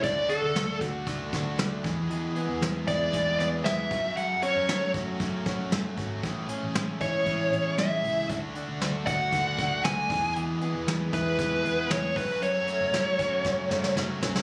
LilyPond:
<<
  \new Staff \with { instrumentName = "Lead electric guitar" } { \time 4/4 \key fis \minor \tempo 4 = 116 d''8 a'4 r2 r8 | r4. d''4 d''8 e''4 | fis''8 cis''4 r2 r8 | r4. cis''4. e''4 |
r4. fis''4. gis''4 | r4. b'4. cis''8 b'8 | cis''2. r4 | }
  \new Staff \with { instrumentName = "Clean electric guitar" } { \time 4/4 \key fis \minor d8 d'8 a8 fis'8 a8 d'8 a8 e8 | e8 b8 gis8 e'8 gis8 b8 gis8 fis8 | fis8 cis'8 a8 fis'8 a8 cis'8 a8 fis'8 | a,8 cis'8 gis8 e'8 e8 cis'8 gis8 e'8 |
d8 d'8 a8 fis'8 a8 d'8 a8 e8 | e8 b8 gis8 e'8 gis8 b8 gis8 fis,8 | fis,8 a8 fis8 cis'8 cis8 a8 fis8 cis'8 | }
  \new Staff \with { instrumentName = "Overdriven electric guitar" } { \time 4/4 \key fis \minor <d a d' fis'>8 <a d' fis'>4. <d a d' fis'>8 <a d' fis'>8 <d a d' fis'>8 <e gis b gis'>8 | <e, b, e gis b gis'>8 <e gis b gis'>4 <e gis b gis'>8 <e, b, e gis b gis'>8 <e gis b gis'>8 <e gis b gis'>8 <fis a cis' fis'>8 | <fis, cis fis a cis' fis'>8 <fis a cis' fis'>4 <fis a cis' fis'>8 <fis, cis fis a cis' fis'>8 <fis a cis' fis'>8 <fis a cis' fis'>8 <fis a cis' fis'>8 | <a, e a cis' gis'>8 <a cis' gis'>4 <a cis' gis'>8 <a, e a cis' gis'>8 <a cis' gis'>8 <e a cis' gis'>8 <a cis' gis'>8 |
<d a d' fis'>8 <a d' fis'>4 <a d' fis'>8 <d a d' fis'>8 <a d' fis'>8 <d a d' fis'>8 <e gis b gis'>8 | <e, b, e gis b gis'>8 <e gis b gis'>4 <e gis b gis'>8 <e, b, e gis b gis'>8 <e gis b gis'>8 <e gis b gis'>8 <fis, cis fis a cis' fis'>8~ | <fis, cis fis a cis' fis'>8 <fis a cis' fis'>4 <fis a cis' fis'>8 <fis, cis fis a cis' fis'>8 <fis a cis' fis'>8 <fis a cis' fis'>8 <fis a cis' fis'>8 | }
  \new Staff \with { instrumentName = "Picked electric bass" } { \clef bass \time 4/4 \key fis \minor d,8 r16 d,16 d,8 d,8 d,8 d,8 d,8 e,8~ | e,8 r16 e,16 e,8 e,8 e,8 e,8 e,8 fis,8~ | fis,8 r16 fis,16 fis,8 fis,8 fis,8 fis,8 fis,8 gis,,8 | a,,8 r16 a,,16 a,,8 a,,8 a,,8 a,,8 a,,8 cis,8 |
d,8 r16 d,16 d,8 d,8 d,8 d,8 d,8 e,8~ | e,8 r16 e,16 e,8 e,8 e,8 e,8 e,8 fis,8~ | fis,8 r16 fis,,16 fis,,8 fis,,8 fis,,8 fis,,8 fis,,8 cis,8 | }
  \new DrumStaff \with { instrumentName = "Drums" } \drummode { \time 4/4 <hh bd>8 hh8 <hh sn>8 <hh bd>8 <hh bd>8 <hh bd sn>8 <hh sn>8 <hh bd>8 | hh8 hh8 <hh sn>8 <hh bd>8 <hh bd>8 <hh sn>8 <hh sn>8 <hh bd>8 | hh8 hh8 <hh sn>8 <hh bd>8 <hh bd>8 <hh bd sn>8 <hh sn>8 <hh bd>8 | <hh bd>8 hh8 <hh sn>8 <hh bd>8 <hh bd>8 hh8 <hh sn>8 hho8 |
<hh bd>8 hh8 <hh sn>8 <hh bd>8 <hh bd>8 <hh bd>8 <hh sn>8 <hho bd>8 | hh8 hh8 <hh sn>8 <hh bd>8 <hh bd>8 hh8 <hh sn>8 <hho bd>8 | hh8 hh8 <hh sn>8 <hh bd>8 <bd sn>8 sn16 sn16 sn8 sn16 sn16 | }
>>